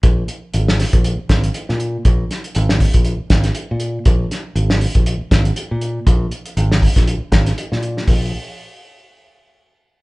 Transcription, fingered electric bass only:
X:1
M:4/4
L:1/16
Q:"Swing 16ths" 1/4=119
K:Ab
V:1 name="Fingered electric bass" clef=bass
B,,,2 z2 A,,,3 B,,,2 z A,,,2 z B,,3 | B,,,2 z2 A,,,3 B,,,2 z A,,,2 z B,,3 | B,,,2 z2 A,,,3 B,,,2 z A,,,2 z B,,3 | B,,,2 z2 A,,,3 B,,,2 z A,,,2 z B,,3 |
B,,,2 z12 z2 |]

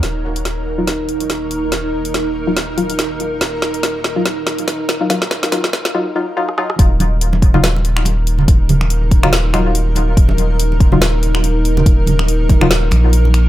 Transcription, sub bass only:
X:1
M:4/4
L:1/8
Q:"Swing 16ths" 1/4=142
K:Ebm
V:1 name="Sub bass" clef=bass
E,,,8 | E,,,8 | E,,,8 | E,,,4 z4 |
E,,,8 | E,,,8 | E,,,8 | E,,,4- E,,, B,,,3 |]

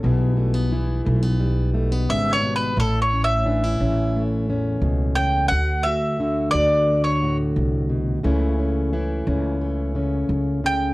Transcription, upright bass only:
X:1
M:4/4
L:1/8
Q:1/4=88
K:Amix
V:1 name="Upright bass" clef=bass
B,,,3 B,,,3 ^G,,,2 | A,,,3 A,,,3 C,,2 | D,,3 D,,3 =C,,2 | C,,3 C,,3 C,,2 |]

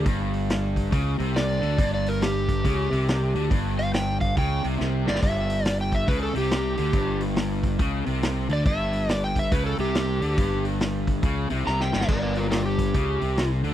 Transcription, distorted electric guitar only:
X:1
M:4/4
L:1/8
Q:"Swing" 1/4=140
K:C
V:1 name="Distorted electric guitar" clef=bass
G,,4 ^C, =C,2 D, | G,,4 ^C, =C,2 D, | G,,4 ^C, =C, C, G,, | G,,4 ^C, =C,2 D, |
G,,4 ^C, =C,2 D, | G,,4 ^C, =C,2 D, | G,,4 ^C, =C, C, G,, | G,,4 ^C, =C,2 D, |]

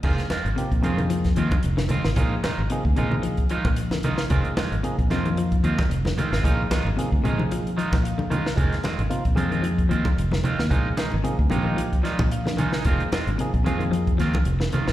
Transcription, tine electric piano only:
X:1
M:4/4
L:1/16
Q:"Swing 16ths" 1/4=112
K:Fdor
V:1 name="Tine electric piano"
[F,B,EA]2 z2 [F,B,EG]2 [F,B,EA]4 z6 | [F,B,EA]2 z2 [F,B,EA]2 [F,B,EA]4 z6 | [F,B,EA]2 z2 [F,B,EA]2 [F,B,EF]4 z6 | [F,B,EA]2 z2 [F,B,EA]2 [F,B,EA]4 e2 f2 b2 |
[F,B,EA]2 z2 [F,B,EF]2 [F,B,EA]4 z6 | [F,B,EA]2 z2 [F,B,EA]2 [F,B,EG]4 d e f2 a2 | [F,B,EA]2 z2 [F,B,EA]2 [F,B,EA]4 z6 |]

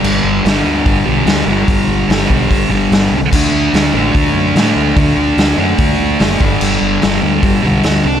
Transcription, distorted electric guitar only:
X:1
M:4/4
L:1/8
Q:1/4=146
K:G
V:1 name="Distorted electric guitar" clef=bass
[G,,D,G,]2 [G,,D,G,]3 [G,,D,G,]2 [G,,D,G,]- | [G,,D,G,]2 [G,,D,G,]3 [G,,D,G,]2 z | [D,A,D]3 [D,A,D]3 [D,A,D]2 | [D,A,D]3 [D,A,D]3 [D,A,D] [G,,D,G,]- |
[G,,D,G,]2 [G,,D,G,]3 [G,,D,G,]2 z |]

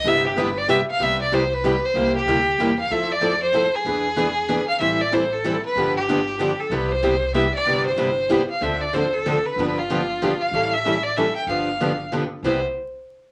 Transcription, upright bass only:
X:1
M:3/4
L:1/8
Q:"Swing" 1/4=189
K:C
V:1 name="Upright bass" clef=bass
G,,,6 | C,,6 | C,,2 D,,2 E,,2 | F,,6 |
E,,6 | A,,,6 | G,,,6 | C,,6 |
G,,,6 | D,,6 | G,,,6 | A,,,6 |
G,,,6 | C,, z4 z |]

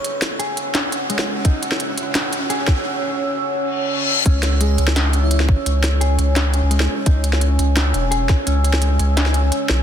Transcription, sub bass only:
X:1
M:4/4
L:1/16
Q:1/4=171
K:C#m
V:1 name="Sub bass" clef=bass
z16 | z16 | z16 | C,,6 C,,8 G,,, z |
C,,6 C,,4- C,, C,,3 z2 | C,,6 C,,4 E,,,4 z2 | C,,6 C,,6 z2 B,,,2 |]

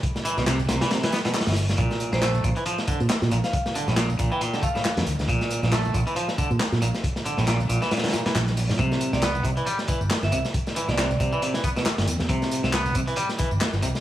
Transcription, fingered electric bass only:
X:1
M:4/4
L:1/16
Q:"Swing 16ths" 1/4=137
K:Cmix
V:1 name="Fingered electric bass" clef=bass
z3 C,,3 C,, z6 G,,,3 | B,,, z2 B,,,3 B,,, z4 B,, z B,, B,,, z | z3 B,,,3 B,,, z6 F,, D,, D,, | B,,, z2 B,,,3 B,,, z4 B,, z B,, B,,, z |
z3 B,,,3 B,,, z4 z B,,,3 B,, | C,, z2 C,,3 C,, z4 G,,, z G,,, C,, z | z3 C,,3 C,, z6 G,,, E,, E,, | C,, z2 C,,3 C,, z4 G,,, z G,,, C,, z |]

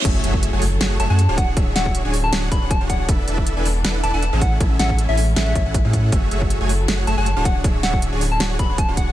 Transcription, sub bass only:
X:1
M:4/4
L:1/16
Q:"Swing 16ths" 1/4=158
K:F#m
V:1 name="Sub bass" clef=bass
F,,,2 F,,,3 F,,,3 F,,,2 F,,, F,,2 D,,,3 | D,,,2 D,,,3 D,,,3 D,,,2 D,,, D,,,2 D,,,3 | E,,,2 E,,,3 E,,,3 E,,,2 E,,, E,,,2 A,,,3 | A,,,2 A,,,3 A,,,3 A,,,2 A,,, A,,,2 A,,3 |
F,,,2 F,,,3 F,,,3 F,,,2 F,,, F,,,2 D,,,3 | D,,,2 D,,,3 D,,,3 D,,,2 D,,, D,,,2 D,,,3 |]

